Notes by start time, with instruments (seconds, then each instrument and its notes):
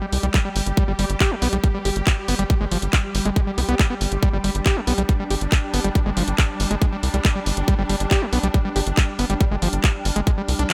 Already playing: synth drone G3 G4, ambient pad D4 G4 G5 D6
0.02 acid bass G3
0.13 analog synth bass C2, open hi-hat
0.23 analog synth bass C2, acid bass G3, closed hi-hat
0.34 acid bass G3, kick, clap, closed hi-hat
0.45 acid bass G3
0.56 analog synth bass G1, open hi-hat
0.66 analog synth bass G1, closed hi-hat
0.77 acid bass G3, kick, closed hi-hat
0.88 analog synth bass G1, acid bass G3
0.99 analog synth bass G1, acid bass G3, open hi-hat
1.10 analog synth bass G1, closed hi-hat
1.20 acid bass G4, kick, clap, closed hi-hat
1.31 acid bass G3, ambient pad C6
1.42 analog synth bass B1, acid bass B3, open hi-hat
1.53 analog synth bass B1, acid bass G3, closed hi-hat
1.64 acid bass G3, kick, closed hi-hat
1.74 acid bass G3
1.85 analog synth bass G1, acid bass G4, open hi-hat
1.96 analog synth bass G1, closed hi-hat
2.07 kick, clap, closed hi-hat
2.28 analog synth bass G1, acid bass B3, open hi-hat
2.39 analog synth bass G1, acid bass G3, closed hi-hat
2.50 acid bass G3, kick, closed hi-hat
2.61 analog synth bass G1, acid bass G#3
2.71 analog synth bass G1, acid bass F3, open hi-hat
2.82 analog synth bass G1, closed hi-hat
2.93 kick, clap, closed hi-hat
3.15 analog synth bass G1, open hi-hat
3.25 analog synth bass G1, acid bass G#3, closed hi-hat
3.36 acid bass G#3, kick, closed hi-hat
3.47 acid bass G3
3.58 analog synth bass C2, acid bass B3, open hi-hat
3.69 analog synth bass C2, acid bass B3, closed hi-hat
3.79 acid bass G#3, kick, clap, closed hi-hat
3.90 acid bass B3
4.01 analog synth bass G1, open hi-hat
4.12 analog synth bass G1, closed hi-hat
4.23 acid bass G3, synth drone D4, kick, closed hi-hat
4.33 analog synth bass G1, acid bass G3
4.44 analog synth bass G1, acid bass G3, open hi-hat
4.55 analog synth bass G1, closed hi-hat
4.66 acid bass G4, kick, clap, closed hi-hat
4.76 acid bass G3, ambient pad D6
4.87 analog synth bass B1, acid bass B3, open hi-hat
4.98 analog synth bass B1, acid bass G3, closed hi-hat
5.09 acid bass G3, kick, closed hi-hat
5.20 acid bass G3
5.30 analog synth bass G1, acid bass G4, open hi-hat
5.41 analog synth bass G1, closed hi-hat
5.52 kick, clap, closed hi-hat
5.74 analog synth bass G1, acid bass B3, open hi-hat
5.84 analog synth bass G1, acid bass G3, closed hi-hat
5.95 acid bass G3, kick, closed hi-hat
6.06 analog synth bass G1, acid bass G#3
6.17 analog synth bass G1, acid bass F3, open hi-hat
6.28 analog synth bass G1, closed hi-hat
6.38 kick, clap, closed hi-hat
6.60 analog synth bass G1, open hi-hat
6.71 analog synth bass G1, acid bass G#3, closed hi-hat
6.82 acid bass G#3, kick, closed hi-hat
6.92 acid bass G3
7.03 analog synth bass C2, open hi-hat
7.14 analog synth bass C2, acid bass G3, closed hi-hat
7.25 acid bass G3, kick, clap, closed hi-hat
7.36 acid bass G3
7.46 analog synth bass G1, open hi-hat
7.57 analog synth bass G1, closed hi-hat
7.68 acid bass G3, kick, closed hi-hat
7.79 analog synth bass G1, acid bass G3
7.89 analog synth bass G1, acid bass G3, open hi-hat
8.00 analog synth bass G1, closed hi-hat
8.11 acid bass G4, kick, clap, closed hi-hat
8.22 acid bass G3, ambient pad F6
8.33 analog synth bass B1, acid bass B3, open hi-hat
8.43 analog synth bass B1, acid bass G3, closed hi-hat
8.54 acid bass G3, kick, closed hi-hat
8.65 acid bass G3
8.76 analog synth bass G1, acid bass G4, open hi-hat
8.87 analog synth bass G1, closed hi-hat
8.97 kick, clap, closed hi-hat
9.19 analog synth bass G1, acid bass B3, open hi-hat
9.30 analog synth bass G1, acid bass G3, closed hi-hat
9.41 acid bass G3, kick, closed hi-hat
9.51 analog synth bass G1, acid bass G#3
9.62 analog synth bass G1, acid bass F3, open hi-hat
9.73 analog synth bass G1, closed hi-hat
9.84 kick, clap, closed hi-hat
10.05 analog synth bass G1, open hi-hat
10.16 analog synth bass G1, acid bass G#3, closed hi-hat
10.27 acid bass G#3, kick, closed hi-hat, reverse cymbal
10.38 acid bass G3
10.48 analog synth bass C2, open hi-hat
10.59 analog synth bass C2, acid bass D4, closed hi-hat